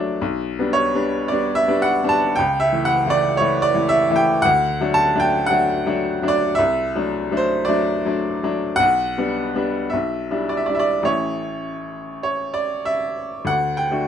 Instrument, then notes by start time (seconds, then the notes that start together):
upright piano
Already playing: F#3 A3 D4 D5
0.21 B1
0.59 G3 B3 D4
0.73 C#5
0.95 G3 B3 D4
1.28 G3 B3 D4 D5
1.55 E5
1.68 G3 B3 D4
1.82 F#5
2.03 G3 B3 D4
2.09 A5
2.36 C#2 G5
2.60 E5
2.73 E3 A3 E4
2.85 F#5
3.06 E3 A3 E4
3.10 D5
3.37 E3 A3 E4 C#5
3.62 D5
3.74 E3 A3 E4
3.89 E5
4.10 E3 A3 E4
4.16 G5
4.42 D2 F#5
4.81 F#3 A3 D4
4.94 A5
5.15 F#3 A3 D4
5.20 G5
5.46 F#3 A3 F#5
5.51 D4
5.86 F#3 A3 D4
6.22 F#3 A3 D4
6.28 D5
6.55 C2 E5
6.95 F#3 A3 D4
7.31 F#3 A3 D4
7.37 C5
7.65 F#3 A3 D5
7.69 D4
8.05 F#3 A3 D4
8.43 F#3 A3 D4
8.76 B1 F#5
9.18 G3 B3 D4
9.55 G3 B3 D4
9.90 B1 E5
10.31 G3 D4 E4
10.49 D5
10.57 E5
10.66 G3 D4 E4 D5
10.75 E5
10.79 D5
11.03 A1 A3 C#4 E4 C#5
12.23 C#5
12.54 D5
12.85 E5
13.45 D2 F#5
13.77 G5
13.91 A3 D4 F#4